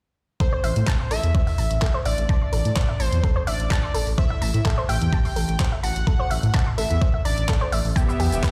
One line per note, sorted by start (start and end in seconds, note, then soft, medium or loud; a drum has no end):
0.40 0.48 A4 medium
0.40 1.12 C5 loud
0.40 kick loud
0.40 closed hi-hat soft
0.53 0.57 C5 loud
0.64 0.71 A1 medium
0.64 0.76 E5 medium
0.64 open hi-hat medium
0.76 0.83 A2 medium
0.76 closed hi-hat medium
0.87 0.99 A5 loud
0.87 kick medium
0.87 clap loud
0.87 closed hi-hat medium
1.00 1.07 C6 medium
1.11 1.19 A1 medium
1.11 1.19 A4 medium
1.11 1.97 E5 medium
1.11 open hi-hat loud
1.23 1.30 E2 medium
1.23 closed hi-hat medium
1.34 1.43 C5 medium
1.34 kick loud
1.34 closed hi-hat soft
1.47 1.54 E5 medium
1.47 open hi-hat medium
1.58 1.66 A1 medium
1.58 1.63 A5 medium
1.58 open hi-hat medium
1.71 1.78 A1 medium
1.71 closed hi-hat medium
1.82 1.90 A4 medium
1.82 kick medium
1.82 clap loud
1.82 closed hi-hat soft
1.94 1.99 C5 loud
2.05 2.13 A1 medium
2.05 3.01 D5 loud
2.05 2.17 E5 loud
2.05 open hi-hat medium
2.18 2.25 A1 medium
2.18 closed hi-hat medium
2.29 2.41 A5 loud
2.29 kick loud
2.29 closed hi-hat soft
2.41 2.49 C6 medium
2.53 2.60 A1 medium
2.53 2.61 A4 medium
2.53 open hi-hat loud
2.65 2.72 A2 medium
2.65 closed hi-hat medium
2.76 2.85 C5 medium
2.76 kick loud
2.76 clap loud
2.76 closed hi-hat soft
2.89 2.96 E5 medium
3.00 3.08 A1 medium
3.00 3.43 C5 medium
3.00 3.05 A5 medium
3.00 open hi-hat loud
3.12 3.19 E2 medium
3.12 closed hi-hat medium
3.23 3.32 A4 medium
3.23 kick loud
3.23 closed hi-hat soft
3.36 3.40 C5 loud
3.47 3.55 A1 medium
3.47 4.09 D5 medium
3.47 3.59 E5 medium
3.47 open hi-hat loud
3.60 3.67 A1 medium
3.60 closed hi-hat medium
3.71 3.83 A5 loud
3.71 kick loud
3.71 clap loud
3.71 closed hi-hat soft
3.83 3.91 C6 medium
3.94 4.02 A1 medium
3.94 4.03 A4 medium
3.94 open hi-hat loud
4.07 4.14 A1 medium
4.07 open hi-hat medium
4.18 4.26 C5 medium
4.18 4.80 E5 loud
4.18 kick loud
4.18 closed hi-hat soft
4.30 4.38 E5 medium
4.42 4.49 A1 medium
4.42 4.47 A5 medium
4.42 open hi-hat loud
4.54 4.61 A2 medium
4.54 closed hi-hat medium
4.65 4.74 A4 medium
4.65 kick loud
4.65 clap loud
4.65 closed hi-hat soft
4.78 4.82 C5 medium
4.89 4.97 A1 medium
4.89 5.01 E5 loud
4.89 5.75 G5 loud
4.89 open hi-hat loud
5.01 5.08 E2 medium
5.01 closed hi-hat medium
5.12 5.24 A5 loud
5.12 kick loud
5.12 closed hi-hat soft
5.25 5.32 C6 medium
5.25 open hi-hat medium
5.36 5.44 A1 medium
5.36 5.44 A4 medium
5.36 open hi-hat loud
5.49 5.56 A1 medium
5.49 closed hi-hat medium
5.60 5.68 C5 medium
5.60 kick loud
5.60 clap loud
5.60 closed hi-hat soft
5.72 5.80 E5 medium
5.83 5.91 A1 medium
5.83 6.69 F#5 loud
5.83 5.88 A5 medium
5.83 open hi-hat loud
5.96 6.03 A1 medium
5.96 closed hi-hat medium
6.07 6.15 A4 medium
6.07 kick loud
6.07 closed hi-hat soft
6.19 6.24 C5 medium
6.30 6.38 A1 medium
6.30 6.42 E5 loud
6.30 open hi-hat loud
6.43 6.50 A2 medium
6.43 closed hi-hat medium
6.54 6.66 A5 loud
6.54 kick loud
6.54 clap loud
6.54 closed hi-hat soft
6.67 6.74 C6 medium
6.78 6.86 A1 medium
6.78 6.86 A4 medium
6.78 7.21 E5 medium
6.78 open hi-hat loud
6.90 6.97 E2 medium
6.90 closed hi-hat medium
7.01 7.10 C5 medium
7.01 kick loud
7.01 closed hi-hat soft
7.14 7.21 E5 medium
7.25 7.33 A1 medium
7.25 7.87 D5 medium
7.25 7.30 A5 medium
7.25 open hi-hat loud
7.38 7.45 A1 medium
7.38 closed hi-hat medium
7.49 7.57 A4 medium
7.49 kick loud
7.49 clap loud
7.49 closed hi-hat soft
7.61 7.66 C5 loud
7.72 7.80 A1 medium
7.72 7.84 E5 loud
7.72 open hi-hat loud
7.85 7.92 A1 medium
7.85 open hi-hat medium
7.96 8.29 B3 medium
7.96 8.29 G4 medium
7.96 8.29 E5 loud
7.96 8.08 G5 medium
7.96 kick loud
7.96 closed hi-hat soft
7.96 shaker medium
8.09 8.16 B5 medium
8.09 shaker soft
8.20 8.27 E2 medium
8.20 8.28 G4 medium
8.20 open hi-hat loud
8.32 8.39 E1 medium
8.32 8.45 B3 medium
8.32 8.45 G4 medium
8.32 8.45 E5 medium
8.32 closed hi-hat medium
8.32 shaker medium
8.43 8.51 B4 medium
8.43 kick loud
8.43 clap loud
8.43 closed hi-hat soft
8.43 shaker medium